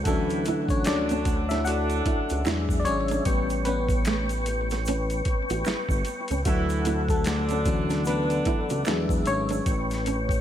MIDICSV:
0, 0, Header, 1, 8, 480
1, 0, Start_track
1, 0, Key_signature, 2, "major"
1, 0, Tempo, 800000
1, 31, Time_signature, 4, 2, 24, 8
1, 6245, End_track
2, 0, Start_track
2, 0, Title_t, "Tonewheel organ"
2, 0, Program_c, 0, 16
2, 21, Note_on_c, 0, 78, 61
2, 22, Note_on_c, 0, 69, 64
2, 1452, Note_off_c, 0, 69, 0
2, 1452, Note_off_c, 0, 78, 0
2, 1467, Note_on_c, 0, 68, 69
2, 1469, Note_on_c, 0, 76, 55
2, 1944, Note_off_c, 0, 68, 0
2, 1945, Note_off_c, 0, 76, 0
2, 1952, Note_on_c, 0, 85, 68
2, 1955, Note_on_c, 0, 71, 70
2, 1955, Note_on_c, 0, 79, 60
2, 3853, Note_off_c, 0, 85, 0
2, 3854, Note_off_c, 0, 71, 0
2, 3854, Note_off_c, 0, 79, 0
2, 3876, Note_on_c, 0, 69, 69
2, 3879, Note_on_c, 0, 78, 62
2, 5299, Note_off_c, 0, 69, 0
2, 5301, Note_off_c, 0, 78, 0
2, 5321, Note_on_c, 0, 76, 64
2, 5322, Note_on_c, 0, 68, 69
2, 5791, Note_off_c, 0, 76, 0
2, 5792, Note_off_c, 0, 68, 0
2, 5797, Note_on_c, 0, 71, 72
2, 5797, Note_on_c, 0, 85, 75
2, 5798, Note_on_c, 0, 79, 66
2, 6245, Note_off_c, 0, 71, 0
2, 6245, Note_off_c, 0, 79, 0
2, 6245, Note_off_c, 0, 85, 0
2, 6245, End_track
3, 0, Start_track
3, 0, Title_t, "Nylon-string guitar"
3, 0, Program_c, 1, 24
3, 47, Note_on_c, 1, 62, 64
3, 152, Note_off_c, 1, 62, 0
3, 287, Note_on_c, 1, 64, 76
3, 392, Note_off_c, 1, 64, 0
3, 667, Note_on_c, 1, 61, 75
3, 736, Note_off_c, 1, 61, 0
3, 907, Note_on_c, 1, 62, 75
3, 976, Note_off_c, 1, 62, 0
3, 1238, Note_on_c, 1, 64, 73
3, 1347, Note_off_c, 1, 64, 0
3, 1388, Note_on_c, 1, 66, 60
3, 1456, Note_off_c, 1, 66, 0
3, 1479, Note_on_c, 1, 64, 81
3, 1588, Note_off_c, 1, 64, 0
3, 1867, Note_on_c, 1, 62, 79
3, 1936, Note_off_c, 1, 62, 0
3, 2199, Note_on_c, 1, 61, 70
3, 2308, Note_off_c, 1, 61, 0
3, 2442, Note_on_c, 1, 57, 72
3, 2549, Note_off_c, 1, 57, 0
3, 2833, Note_on_c, 1, 59, 77
3, 2899, Note_off_c, 1, 59, 0
3, 2930, Note_on_c, 1, 61, 88
3, 3034, Note_off_c, 1, 61, 0
3, 3304, Note_on_c, 1, 66, 73
3, 3374, Note_off_c, 1, 66, 0
3, 3398, Note_on_c, 1, 64, 71
3, 3507, Note_off_c, 1, 64, 0
3, 3785, Note_on_c, 1, 61, 69
3, 3855, Note_off_c, 1, 61, 0
3, 3882, Note_on_c, 1, 62, 75
3, 3989, Note_off_c, 1, 62, 0
3, 4120, Note_on_c, 1, 64, 80
3, 4228, Note_off_c, 1, 64, 0
3, 4505, Note_on_c, 1, 61, 72
3, 4574, Note_off_c, 1, 61, 0
3, 4742, Note_on_c, 1, 62, 80
3, 4812, Note_off_c, 1, 62, 0
3, 5081, Note_on_c, 1, 64, 81
3, 5188, Note_off_c, 1, 64, 0
3, 5226, Note_on_c, 1, 66, 62
3, 5295, Note_off_c, 1, 66, 0
3, 5319, Note_on_c, 1, 64, 77
3, 5427, Note_off_c, 1, 64, 0
3, 5703, Note_on_c, 1, 62, 76
3, 5773, Note_off_c, 1, 62, 0
3, 6043, Note_on_c, 1, 61, 77
3, 6150, Note_off_c, 1, 61, 0
3, 6245, End_track
4, 0, Start_track
4, 0, Title_t, "FM electric piano"
4, 0, Program_c, 2, 5
4, 0, Control_c, 2, 64, 127
4, 39, Control_c, 2, 64, 0
4, 41, Note_on_c, 2, 52, 53
4, 43, Note_on_c, 2, 54, 50
4, 44, Note_on_c, 2, 69, 86
4, 47, Note_on_c, 2, 61, 60
4, 49, Note_on_c, 2, 57, 62
4, 161, Control_c, 2, 64, 127
4, 374, Note_off_c, 2, 52, 0
4, 375, Note_off_c, 2, 54, 0
4, 378, Note_off_c, 2, 61, 0
4, 401, Note_off_c, 2, 57, 0
4, 421, Note_on_c, 2, 73, 83
4, 428, Note_on_c, 2, 61, 62
4, 434, Note_off_c, 2, 69, 0
4, 511, Note_off_c, 2, 61, 0
4, 517, Note_off_c, 2, 73, 0
4, 518, Note_on_c, 2, 74, 89
4, 526, Note_on_c, 2, 62, 64
4, 880, Note_off_c, 2, 62, 0
4, 893, Note_on_c, 2, 76, 88
4, 904, Note_on_c, 2, 64, 67
4, 911, Note_off_c, 2, 74, 0
4, 988, Note_on_c, 2, 78, 93
4, 989, Note_off_c, 2, 64, 0
4, 993, Note_off_c, 2, 76, 0
4, 1002, Note_on_c, 2, 66, 71
4, 1446, Note_off_c, 2, 78, 0
4, 1452, Note_off_c, 2, 66, 0
4, 1474, Note_on_c, 2, 54, 56
4, 1477, Note_on_c, 2, 56, 49
4, 1478, Control_c, 2, 64, 0
4, 1482, Note_on_c, 2, 62, 66
4, 1568, Control_c, 2, 64, 127
4, 1678, Note_on_c, 2, 74, 88
4, 1709, Note_on_c, 2, 73, 101
4, 1711, Note_off_c, 2, 74, 0
4, 1720, Note_on_c, 2, 61, 89
4, 1929, Note_off_c, 2, 54, 0
4, 1930, Note_off_c, 2, 56, 0
4, 1933, Note_off_c, 2, 62, 0
4, 1955, Note_off_c, 2, 61, 0
4, 1956, Note_on_c, 2, 55, 52
4, 1959, Control_c, 2, 64, 0
4, 1959, Note_on_c, 2, 59, 48
4, 1962, Note_on_c, 2, 61, 57
4, 2068, Control_c, 2, 64, 127
4, 2166, Note_off_c, 2, 73, 0
4, 2190, Note_on_c, 2, 71, 96
4, 2195, Note_off_c, 2, 59, 0
4, 2202, Note_on_c, 2, 59, 83
4, 2292, Note_off_c, 2, 55, 0
4, 2295, Note_off_c, 2, 61, 0
4, 3606, Note_off_c, 2, 71, 0
4, 3613, Note_off_c, 2, 59, 0
4, 3873, Note_on_c, 2, 66, 78
4, 3880, Control_c, 2, 64, 0
4, 3882, Note_on_c, 2, 54, 64
4, 4001, Control_c, 2, 64, 127
4, 4233, Note_off_c, 2, 66, 0
4, 4237, Note_off_c, 2, 54, 0
4, 4261, Note_on_c, 2, 69, 87
4, 4271, Note_on_c, 2, 57, 63
4, 4597, Note_on_c, 2, 52, 60
4, 4601, Note_on_c, 2, 54, 51
4, 4603, Note_on_c, 2, 61, 64
4, 4815, Note_off_c, 2, 57, 0
4, 4842, Note_on_c, 2, 71, 94
4, 4849, Note_on_c, 2, 59, 72
4, 4851, Note_off_c, 2, 69, 0
4, 5290, Note_off_c, 2, 52, 0
4, 5292, Note_off_c, 2, 54, 0
4, 5293, Note_off_c, 2, 61, 0
4, 5318, Control_c, 2, 64, 0
4, 5318, Note_on_c, 2, 54, 55
4, 5324, Note_on_c, 2, 56, 54
4, 5326, Note_on_c, 2, 62, 66
4, 5423, Control_c, 2, 64, 127
4, 5536, Note_off_c, 2, 59, 0
4, 5563, Note_on_c, 2, 73, 105
4, 5568, Note_on_c, 2, 61, 76
4, 5578, Note_off_c, 2, 71, 0
4, 5653, Note_off_c, 2, 54, 0
4, 5656, Note_off_c, 2, 56, 0
4, 5657, Note_off_c, 2, 62, 0
4, 5800, Control_c, 2, 64, 0
4, 5891, Control_c, 2, 64, 127
4, 6245, Note_off_c, 2, 61, 0
4, 6245, Note_off_c, 2, 73, 0
4, 6245, End_track
5, 0, Start_track
5, 0, Title_t, "Horn section"
5, 0, Program_c, 3, 61
5, 29, Note_on_c, 3, 64, 93
5, 30, Note_on_c, 3, 52, 85
5, 392, Note_off_c, 3, 52, 0
5, 392, Note_off_c, 3, 64, 0
5, 510, Note_on_c, 3, 50, 86
5, 510, Note_on_c, 3, 62, 99
5, 966, Note_off_c, 3, 50, 0
5, 966, Note_off_c, 3, 62, 0
5, 991, Note_on_c, 3, 50, 84
5, 991, Note_on_c, 3, 62, 101
5, 1592, Note_off_c, 3, 50, 0
5, 1592, Note_off_c, 3, 62, 0
5, 3872, Note_on_c, 3, 52, 92
5, 3872, Note_on_c, 3, 64, 108
5, 4233, Note_off_c, 3, 52, 0
5, 4234, Note_off_c, 3, 64, 0
5, 4353, Note_on_c, 3, 50, 102
5, 4354, Note_on_c, 3, 62, 108
5, 4808, Note_off_c, 3, 50, 0
5, 4808, Note_off_c, 3, 62, 0
5, 4835, Note_on_c, 3, 50, 90
5, 4835, Note_on_c, 3, 62, 111
5, 5434, Note_off_c, 3, 50, 0
5, 5434, Note_off_c, 3, 62, 0
5, 6245, End_track
6, 0, Start_track
6, 0, Title_t, "Analog synth bass"
6, 0, Program_c, 4, 38
6, 37, Note_on_c, 4, 38, 95
6, 1210, Note_off_c, 4, 38, 0
6, 1237, Note_on_c, 4, 37, 48
6, 1293, Note_off_c, 4, 37, 0
6, 1386, Note_on_c, 4, 37, 91
6, 1464, Note_off_c, 4, 37, 0
6, 1478, Note_on_c, 4, 40, 102
6, 1600, Note_off_c, 4, 40, 0
6, 1617, Note_on_c, 4, 40, 82
6, 1717, Note_on_c, 4, 32, 93
6, 1726, Note_off_c, 4, 40, 0
6, 1922, Note_off_c, 4, 32, 0
6, 1957, Note_on_c, 4, 33, 89
6, 3130, Note_off_c, 4, 33, 0
6, 3158, Note_on_c, 4, 33, 44
6, 3215, Note_off_c, 4, 33, 0
6, 3302, Note_on_c, 4, 33, 94
6, 3382, Note_off_c, 4, 33, 0
6, 3398, Note_on_c, 4, 31, 47
6, 3454, Note_off_c, 4, 31, 0
6, 3535, Note_on_c, 4, 31, 97
6, 3618, Note_off_c, 4, 31, 0
6, 3783, Note_on_c, 4, 37, 74
6, 3862, Note_off_c, 4, 37, 0
6, 3877, Note_on_c, 4, 38, 105
6, 5050, Note_off_c, 4, 38, 0
6, 5079, Note_on_c, 4, 37, 44
6, 5135, Note_off_c, 4, 37, 0
6, 5224, Note_on_c, 4, 37, 77
6, 5303, Note_off_c, 4, 37, 0
6, 5318, Note_on_c, 4, 40, 98
6, 5440, Note_off_c, 4, 40, 0
6, 5459, Note_on_c, 4, 40, 98
6, 5540, Note_off_c, 4, 40, 0
6, 5558, Note_on_c, 4, 32, 91
6, 5762, Note_off_c, 4, 32, 0
6, 5800, Note_on_c, 4, 33, 98
6, 6245, Note_off_c, 4, 33, 0
6, 6245, End_track
7, 0, Start_track
7, 0, Title_t, "Muted nylon-string guitar strokes"
7, 764, Note_on_c, 9, 29, 43
7, 824, Note_off_c, 9, 29, 0
7, 1002, Note_on_c, 9, 29, 46
7, 1062, Note_off_c, 9, 29, 0
7, 1727, Note_on_c, 9, 29, 43
7, 1787, Note_off_c, 9, 29, 0
7, 2689, Note_on_c, 9, 29, 40
7, 2749, Note_off_c, 9, 29, 0
7, 3167, Note_on_c, 9, 29, 43
7, 3227, Note_off_c, 9, 29, 0
7, 3641, Note_on_c, 9, 29, 43
7, 3701, Note_off_c, 9, 29, 0
7, 4596, Note_on_c, 9, 29, 43
7, 4656, Note_off_c, 9, 29, 0
7, 4840, Note_on_c, 9, 29, 44
7, 4900, Note_off_c, 9, 29, 0
7, 5561, Note_on_c, 9, 29, 43
7, 5621, Note_off_c, 9, 29, 0
7, 6245, End_track
8, 0, Start_track
8, 0, Title_t, "Drums"
8, 31, Note_on_c, 9, 42, 77
8, 33, Note_on_c, 9, 36, 106
8, 39, Note_on_c, 9, 82, 57
8, 91, Note_off_c, 9, 42, 0
8, 93, Note_off_c, 9, 36, 0
8, 99, Note_off_c, 9, 82, 0
8, 179, Note_on_c, 9, 82, 41
8, 183, Note_on_c, 9, 42, 35
8, 239, Note_off_c, 9, 82, 0
8, 243, Note_off_c, 9, 42, 0
8, 271, Note_on_c, 9, 82, 46
8, 273, Note_on_c, 9, 42, 61
8, 331, Note_off_c, 9, 82, 0
8, 333, Note_off_c, 9, 42, 0
8, 411, Note_on_c, 9, 36, 92
8, 416, Note_on_c, 9, 82, 44
8, 422, Note_on_c, 9, 42, 44
8, 471, Note_off_c, 9, 36, 0
8, 476, Note_off_c, 9, 82, 0
8, 482, Note_off_c, 9, 42, 0
8, 506, Note_on_c, 9, 42, 68
8, 513, Note_on_c, 9, 26, 70
8, 513, Note_on_c, 9, 82, 66
8, 523, Note_on_c, 9, 38, 111
8, 566, Note_off_c, 9, 42, 0
8, 573, Note_off_c, 9, 26, 0
8, 573, Note_off_c, 9, 82, 0
8, 583, Note_off_c, 9, 38, 0
8, 655, Note_on_c, 9, 42, 35
8, 662, Note_on_c, 9, 82, 50
8, 715, Note_off_c, 9, 42, 0
8, 722, Note_off_c, 9, 82, 0
8, 752, Note_on_c, 9, 42, 73
8, 753, Note_on_c, 9, 36, 84
8, 758, Note_on_c, 9, 82, 43
8, 812, Note_off_c, 9, 42, 0
8, 813, Note_off_c, 9, 36, 0
8, 818, Note_off_c, 9, 82, 0
8, 899, Note_on_c, 9, 82, 43
8, 906, Note_on_c, 9, 42, 48
8, 913, Note_on_c, 9, 38, 35
8, 959, Note_off_c, 9, 82, 0
8, 966, Note_off_c, 9, 42, 0
8, 973, Note_off_c, 9, 38, 0
8, 992, Note_on_c, 9, 82, 67
8, 1004, Note_on_c, 9, 42, 85
8, 1052, Note_off_c, 9, 82, 0
8, 1064, Note_off_c, 9, 42, 0
8, 1138, Note_on_c, 9, 42, 35
8, 1141, Note_on_c, 9, 82, 48
8, 1198, Note_off_c, 9, 42, 0
8, 1201, Note_off_c, 9, 82, 0
8, 1234, Note_on_c, 9, 36, 87
8, 1234, Note_on_c, 9, 42, 67
8, 1294, Note_off_c, 9, 36, 0
8, 1294, Note_off_c, 9, 42, 0
8, 1376, Note_on_c, 9, 82, 49
8, 1380, Note_on_c, 9, 42, 52
8, 1436, Note_off_c, 9, 82, 0
8, 1440, Note_off_c, 9, 42, 0
8, 1470, Note_on_c, 9, 26, 55
8, 1470, Note_on_c, 9, 82, 61
8, 1488, Note_on_c, 9, 42, 82
8, 1489, Note_on_c, 9, 38, 117
8, 1530, Note_off_c, 9, 26, 0
8, 1530, Note_off_c, 9, 82, 0
8, 1548, Note_off_c, 9, 42, 0
8, 1549, Note_off_c, 9, 38, 0
8, 1613, Note_on_c, 9, 36, 82
8, 1622, Note_on_c, 9, 82, 53
8, 1673, Note_off_c, 9, 36, 0
8, 1682, Note_off_c, 9, 82, 0
8, 1712, Note_on_c, 9, 42, 57
8, 1714, Note_on_c, 9, 82, 52
8, 1772, Note_off_c, 9, 42, 0
8, 1774, Note_off_c, 9, 82, 0
8, 1850, Note_on_c, 9, 42, 48
8, 1868, Note_on_c, 9, 82, 49
8, 1910, Note_off_c, 9, 42, 0
8, 1928, Note_off_c, 9, 82, 0
8, 1952, Note_on_c, 9, 42, 89
8, 1954, Note_on_c, 9, 36, 106
8, 1958, Note_on_c, 9, 82, 49
8, 2012, Note_off_c, 9, 42, 0
8, 2014, Note_off_c, 9, 36, 0
8, 2018, Note_off_c, 9, 82, 0
8, 2099, Note_on_c, 9, 82, 48
8, 2101, Note_on_c, 9, 42, 35
8, 2159, Note_off_c, 9, 82, 0
8, 2161, Note_off_c, 9, 42, 0
8, 2190, Note_on_c, 9, 42, 66
8, 2193, Note_on_c, 9, 82, 45
8, 2250, Note_off_c, 9, 42, 0
8, 2253, Note_off_c, 9, 82, 0
8, 2331, Note_on_c, 9, 36, 88
8, 2335, Note_on_c, 9, 82, 44
8, 2340, Note_on_c, 9, 42, 46
8, 2391, Note_off_c, 9, 36, 0
8, 2395, Note_off_c, 9, 82, 0
8, 2400, Note_off_c, 9, 42, 0
8, 2429, Note_on_c, 9, 42, 72
8, 2432, Note_on_c, 9, 26, 66
8, 2432, Note_on_c, 9, 82, 68
8, 2445, Note_on_c, 9, 38, 98
8, 2489, Note_off_c, 9, 42, 0
8, 2492, Note_off_c, 9, 26, 0
8, 2492, Note_off_c, 9, 82, 0
8, 2505, Note_off_c, 9, 38, 0
8, 2576, Note_on_c, 9, 42, 33
8, 2582, Note_on_c, 9, 82, 53
8, 2636, Note_off_c, 9, 42, 0
8, 2642, Note_off_c, 9, 82, 0
8, 2676, Note_on_c, 9, 42, 76
8, 2677, Note_on_c, 9, 82, 44
8, 2736, Note_off_c, 9, 42, 0
8, 2737, Note_off_c, 9, 82, 0
8, 2822, Note_on_c, 9, 82, 47
8, 2827, Note_on_c, 9, 42, 53
8, 2834, Note_on_c, 9, 38, 32
8, 2882, Note_off_c, 9, 82, 0
8, 2887, Note_off_c, 9, 42, 0
8, 2894, Note_off_c, 9, 38, 0
8, 2912, Note_on_c, 9, 82, 67
8, 2926, Note_on_c, 9, 42, 81
8, 2972, Note_off_c, 9, 82, 0
8, 2986, Note_off_c, 9, 42, 0
8, 3059, Note_on_c, 9, 42, 34
8, 3065, Note_on_c, 9, 82, 49
8, 3119, Note_off_c, 9, 42, 0
8, 3125, Note_off_c, 9, 82, 0
8, 3151, Note_on_c, 9, 42, 66
8, 3154, Note_on_c, 9, 36, 94
8, 3211, Note_off_c, 9, 42, 0
8, 3214, Note_off_c, 9, 36, 0
8, 3297, Note_on_c, 9, 82, 50
8, 3300, Note_on_c, 9, 42, 50
8, 3357, Note_off_c, 9, 82, 0
8, 3360, Note_off_c, 9, 42, 0
8, 3389, Note_on_c, 9, 26, 57
8, 3389, Note_on_c, 9, 82, 53
8, 3407, Note_on_c, 9, 38, 109
8, 3407, Note_on_c, 9, 42, 79
8, 3449, Note_off_c, 9, 26, 0
8, 3449, Note_off_c, 9, 82, 0
8, 3467, Note_off_c, 9, 38, 0
8, 3467, Note_off_c, 9, 42, 0
8, 3532, Note_on_c, 9, 36, 84
8, 3541, Note_on_c, 9, 82, 56
8, 3592, Note_off_c, 9, 36, 0
8, 3601, Note_off_c, 9, 82, 0
8, 3628, Note_on_c, 9, 42, 60
8, 3637, Note_on_c, 9, 82, 49
8, 3688, Note_off_c, 9, 42, 0
8, 3697, Note_off_c, 9, 82, 0
8, 3768, Note_on_c, 9, 42, 50
8, 3784, Note_on_c, 9, 82, 49
8, 3828, Note_off_c, 9, 42, 0
8, 3844, Note_off_c, 9, 82, 0
8, 3872, Note_on_c, 9, 42, 89
8, 3874, Note_on_c, 9, 36, 106
8, 3874, Note_on_c, 9, 82, 51
8, 3931, Note_off_c, 9, 42, 0
8, 3934, Note_off_c, 9, 36, 0
8, 3934, Note_off_c, 9, 82, 0
8, 4017, Note_on_c, 9, 82, 51
8, 4020, Note_on_c, 9, 42, 34
8, 4077, Note_off_c, 9, 82, 0
8, 4080, Note_off_c, 9, 42, 0
8, 4111, Note_on_c, 9, 42, 67
8, 4111, Note_on_c, 9, 82, 43
8, 4171, Note_off_c, 9, 42, 0
8, 4171, Note_off_c, 9, 82, 0
8, 4251, Note_on_c, 9, 36, 89
8, 4255, Note_on_c, 9, 82, 43
8, 4260, Note_on_c, 9, 42, 46
8, 4311, Note_off_c, 9, 36, 0
8, 4315, Note_off_c, 9, 82, 0
8, 4320, Note_off_c, 9, 42, 0
8, 4346, Note_on_c, 9, 42, 74
8, 4355, Note_on_c, 9, 26, 67
8, 4355, Note_on_c, 9, 82, 66
8, 4362, Note_on_c, 9, 38, 105
8, 4406, Note_off_c, 9, 42, 0
8, 4415, Note_off_c, 9, 26, 0
8, 4415, Note_off_c, 9, 82, 0
8, 4422, Note_off_c, 9, 38, 0
8, 4492, Note_on_c, 9, 42, 33
8, 4498, Note_on_c, 9, 82, 58
8, 4552, Note_off_c, 9, 42, 0
8, 4558, Note_off_c, 9, 82, 0
8, 4592, Note_on_c, 9, 82, 47
8, 4593, Note_on_c, 9, 42, 68
8, 4594, Note_on_c, 9, 36, 96
8, 4652, Note_off_c, 9, 82, 0
8, 4653, Note_off_c, 9, 42, 0
8, 4654, Note_off_c, 9, 36, 0
8, 4739, Note_on_c, 9, 82, 49
8, 4745, Note_on_c, 9, 42, 46
8, 4753, Note_on_c, 9, 38, 39
8, 4799, Note_off_c, 9, 82, 0
8, 4805, Note_off_c, 9, 42, 0
8, 4813, Note_off_c, 9, 38, 0
8, 4830, Note_on_c, 9, 82, 63
8, 4843, Note_on_c, 9, 42, 77
8, 4890, Note_off_c, 9, 82, 0
8, 4903, Note_off_c, 9, 42, 0
8, 4981, Note_on_c, 9, 42, 36
8, 4983, Note_on_c, 9, 82, 46
8, 5041, Note_off_c, 9, 42, 0
8, 5043, Note_off_c, 9, 82, 0
8, 5072, Note_on_c, 9, 42, 70
8, 5075, Note_on_c, 9, 36, 88
8, 5132, Note_off_c, 9, 42, 0
8, 5135, Note_off_c, 9, 36, 0
8, 5217, Note_on_c, 9, 82, 46
8, 5221, Note_on_c, 9, 42, 50
8, 5277, Note_off_c, 9, 82, 0
8, 5281, Note_off_c, 9, 42, 0
8, 5310, Note_on_c, 9, 26, 59
8, 5310, Note_on_c, 9, 82, 54
8, 5328, Note_on_c, 9, 38, 122
8, 5328, Note_on_c, 9, 42, 81
8, 5370, Note_off_c, 9, 26, 0
8, 5370, Note_off_c, 9, 82, 0
8, 5388, Note_off_c, 9, 38, 0
8, 5388, Note_off_c, 9, 42, 0
8, 5455, Note_on_c, 9, 36, 83
8, 5462, Note_on_c, 9, 82, 48
8, 5515, Note_off_c, 9, 36, 0
8, 5522, Note_off_c, 9, 82, 0
8, 5553, Note_on_c, 9, 42, 64
8, 5560, Note_on_c, 9, 82, 54
8, 5613, Note_off_c, 9, 42, 0
8, 5620, Note_off_c, 9, 82, 0
8, 5693, Note_on_c, 9, 42, 49
8, 5713, Note_on_c, 9, 82, 52
8, 5753, Note_off_c, 9, 42, 0
8, 5773, Note_off_c, 9, 82, 0
8, 5796, Note_on_c, 9, 42, 86
8, 5797, Note_on_c, 9, 36, 117
8, 5801, Note_on_c, 9, 82, 56
8, 5856, Note_off_c, 9, 42, 0
8, 5857, Note_off_c, 9, 36, 0
8, 5861, Note_off_c, 9, 82, 0
8, 5944, Note_on_c, 9, 82, 47
8, 5946, Note_on_c, 9, 42, 36
8, 5953, Note_on_c, 9, 38, 41
8, 6004, Note_off_c, 9, 82, 0
8, 6006, Note_off_c, 9, 42, 0
8, 6013, Note_off_c, 9, 38, 0
8, 6036, Note_on_c, 9, 42, 70
8, 6041, Note_on_c, 9, 82, 43
8, 6096, Note_off_c, 9, 42, 0
8, 6101, Note_off_c, 9, 82, 0
8, 6174, Note_on_c, 9, 36, 84
8, 6184, Note_on_c, 9, 42, 43
8, 6186, Note_on_c, 9, 82, 42
8, 6234, Note_off_c, 9, 36, 0
8, 6244, Note_off_c, 9, 42, 0
8, 6245, Note_off_c, 9, 82, 0
8, 6245, End_track
0, 0, End_of_file